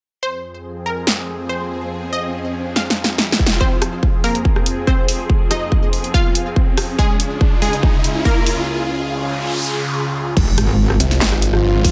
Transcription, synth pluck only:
0, 0, Header, 1, 2, 480
1, 0, Start_track
1, 0, Key_signature, -4, "minor"
1, 0, Tempo, 422535
1, 256, Time_signature, 4, 2, 24, 8
1, 13535, End_track
2, 0, Start_track
2, 0, Title_t, "Synth pluck"
2, 0, Program_c, 0, 84
2, 256, Note_on_c, 0, 72, 88
2, 885, Note_off_c, 0, 72, 0
2, 976, Note_on_c, 0, 70, 91
2, 1605, Note_off_c, 0, 70, 0
2, 1697, Note_on_c, 0, 72, 89
2, 2325, Note_off_c, 0, 72, 0
2, 2416, Note_on_c, 0, 75, 90
2, 3045, Note_off_c, 0, 75, 0
2, 3135, Note_on_c, 0, 77, 86
2, 4004, Note_off_c, 0, 77, 0
2, 4096, Note_on_c, 0, 60, 73
2, 4096, Note_on_c, 0, 72, 90
2, 4725, Note_off_c, 0, 60, 0
2, 4725, Note_off_c, 0, 72, 0
2, 4816, Note_on_c, 0, 58, 74
2, 4816, Note_on_c, 0, 70, 94
2, 5445, Note_off_c, 0, 58, 0
2, 5445, Note_off_c, 0, 70, 0
2, 5537, Note_on_c, 0, 60, 72
2, 5537, Note_on_c, 0, 72, 91
2, 6165, Note_off_c, 0, 72, 0
2, 6166, Note_off_c, 0, 60, 0
2, 6256, Note_on_c, 0, 63, 77
2, 6256, Note_on_c, 0, 75, 94
2, 6885, Note_off_c, 0, 63, 0
2, 6885, Note_off_c, 0, 75, 0
2, 6977, Note_on_c, 0, 65, 75
2, 6977, Note_on_c, 0, 77, 96
2, 7845, Note_off_c, 0, 65, 0
2, 7845, Note_off_c, 0, 77, 0
2, 7936, Note_on_c, 0, 68, 93
2, 7937, Note_on_c, 0, 56, 73
2, 8565, Note_off_c, 0, 56, 0
2, 8565, Note_off_c, 0, 68, 0
2, 8655, Note_on_c, 0, 56, 77
2, 8656, Note_on_c, 0, 68, 99
2, 9284, Note_off_c, 0, 56, 0
2, 9285, Note_off_c, 0, 68, 0
2, 9375, Note_on_c, 0, 58, 76
2, 9375, Note_on_c, 0, 70, 99
2, 9856, Note_off_c, 0, 58, 0
2, 9856, Note_off_c, 0, 70, 0
2, 13535, End_track
0, 0, End_of_file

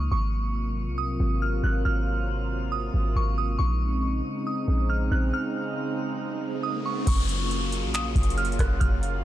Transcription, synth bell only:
0, 0, Header, 1, 2, 480
1, 0, Start_track
1, 0, Tempo, 434783
1, 126, Time_signature, 4, 2, 24, 8
1, 10201, End_track
2, 0, Start_track
2, 0, Title_t, "Synth bell"
2, 0, Program_c, 0, 98
2, 0, Note_on_c, 0, 85, 81
2, 115, Note_off_c, 0, 85, 0
2, 127, Note_on_c, 0, 85, 84
2, 1043, Note_off_c, 0, 85, 0
2, 1081, Note_on_c, 0, 87, 85
2, 1535, Note_off_c, 0, 87, 0
2, 1568, Note_on_c, 0, 89, 82
2, 1795, Note_off_c, 0, 89, 0
2, 1807, Note_on_c, 0, 90, 73
2, 2035, Note_off_c, 0, 90, 0
2, 2044, Note_on_c, 0, 89, 96
2, 2961, Note_off_c, 0, 89, 0
2, 3001, Note_on_c, 0, 87, 88
2, 3455, Note_off_c, 0, 87, 0
2, 3493, Note_on_c, 0, 85, 84
2, 3718, Note_off_c, 0, 85, 0
2, 3729, Note_on_c, 0, 87, 75
2, 3956, Note_off_c, 0, 87, 0
2, 3959, Note_on_c, 0, 85, 103
2, 4878, Note_off_c, 0, 85, 0
2, 4931, Note_on_c, 0, 87, 71
2, 5380, Note_off_c, 0, 87, 0
2, 5405, Note_on_c, 0, 89, 73
2, 5633, Note_off_c, 0, 89, 0
2, 5648, Note_on_c, 0, 90, 78
2, 5875, Note_off_c, 0, 90, 0
2, 5890, Note_on_c, 0, 89, 100
2, 7284, Note_off_c, 0, 89, 0
2, 7323, Note_on_c, 0, 87, 83
2, 7553, Note_off_c, 0, 87, 0
2, 7569, Note_on_c, 0, 85, 86
2, 7796, Note_off_c, 0, 85, 0
2, 7815, Note_on_c, 0, 85, 98
2, 8726, Note_off_c, 0, 85, 0
2, 8769, Note_on_c, 0, 87, 94
2, 9219, Note_off_c, 0, 87, 0
2, 9248, Note_on_c, 0, 89, 96
2, 9475, Note_off_c, 0, 89, 0
2, 9486, Note_on_c, 0, 90, 81
2, 9714, Note_off_c, 0, 90, 0
2, 9720, Note_on_c, 0, 89, 105
2, 10201, Note_off_c, 0, 89, 0
2, 10201, End_track
0, 0, End_of_file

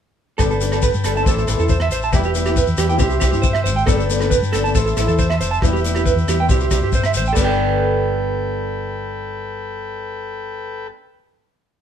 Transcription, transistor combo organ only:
0, 0, Header, 1, 2, 480
1, 0, Start_track
1, 0, Key_signature, 1, "major"
1, 0, Tempo, 435730
1, 422, Time_signature, 4, 2, 24, 8
1, 13015, End_track
2, 0, Start_track
2, 0, Title_t, "Transistor combo organ"
2, 0, Program_c, 0, 18
2, 436, Note_on_c, 0, 79, 56
2, 440, Note_on_c, 0, 71, 61
2, 440, Note_on_c, 0, 81, 66
2, 1356, Note_on_c, 0, 76, 57
2, 1367, Note_on_c, 0, 72, 61
2, 1379, Note_off_c, 0, 79, 0
2, 1381, Note_off_c, 0, 71, 0
2, 2326, Note_off_c, 0, 72, 0
2, 2328, Note_on_c, 0, 71, 64
2, 2333, Note_off_c, 0, 81, 0
2, 2334, Note_on_c, 0, 79, 73
2, 3272, Note_off_c, 0, 76, 0
2, 3288, Note_off_c, 0, 71, 0
2, 3291, Note_off_c, 0, 79, 0
2, 3316, Note_on_c, 0, 79, 78
2, 3317, Note_on_c, 0, 76, 59
2, 3319, Note_on_c, 0, 72, 59
2, 4264, Note_off_c, 0, 76, 0
2, 4265, Note_off_c, 0, 72, 0
2, 4267, Note_on_c, 0, 81, 74
2, 4268, Note_on_c, 0, 71, 62
2, 5217, Note_off_c, 0, 79, 0
2, 5221, Note_off_c, 0, 71, 0
2, 5221, Note_off_c, 0, 81, 0
2, 5233, Note_on_c, 0, 76, 55
2, 5247, Note_on_c, 0, 81, 69
2, 5255, Note_on_c, 0, 72, 67
2, 6171, Note_on_c, 0, 71, 65
2, 6191, Note_on_c, 0, 79, 74
2, 6192, Note_off_c, 0, 81, 0
2, 6196, Note_off_c, 0, 72, 0
2, 7135, Note_off_c, 0, 71, 0
2, 7143, Note_on_c, 0, 72, 65
2, 8082, Note_off_c, 0, 79, 0
2, 8088, Note_off_c, 0, 76, 0
2, 8093, Note_on_c, 0, 71, 57
2, 8096, Note_on_c, 0, 79, 70
2, 8100, Note_off_c, 0, 72, 0
2, 8103, Note_on_c, 0, 69, 63
2, 11974, Note_off_c, 0, 71, 0
2, 11976, Note_off_c, 0, 79, 0
2, 11984, Note_off_c, 0, 69, 0
2, 13015, End_track
0, 0, End_of_file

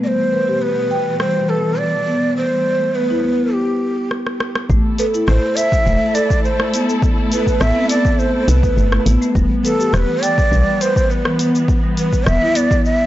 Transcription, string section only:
0, 0, Header, 1, 2, 480
1, 0, Start_track
1, 0, Key_signature, 0, "minor"
1, 0, Tempo, 582524
1, 29, Time_signature, 4, 2, 24, 8
1, 10764, End_track
2, 0, Start_track
2, 0, Title_t, "String section"
2, 0, Program_c, 0, 48
2, 29, Note_on_c, 0, 52, 78
2, 31, Note_on_c, 0, 47, 72
2, 1931, Note_off_c, 0, 47, 0
2, 1953, Note_on_c, 0, 57, 69
2, 2880, Note_off_c, 0, 52, 0
2, 2901, Note_off_c, 0, 57, 0
2, 3873, Note_on_c, 0, 64, 80
2, 3874, Note_on_c, 0, 69, 93
2, 3875, Note_on_c, 0, 57, 81
2, 7678, Note_off_c, 0, 64, 0
2, 7678, Note_off_c, 0, 69, 0
2, 7679, Note_off_c, 0, 57, 0
2, 7708, Note_on_c, 0, 52, 91
2, 7710, Note_on_c, 0, 59, 80
2, 10764, Note_off_c, 0, 52, 0
2, 10764, Note_off_c, 0, 59, 0
2, 10764, End_track
0, 0, End_of_file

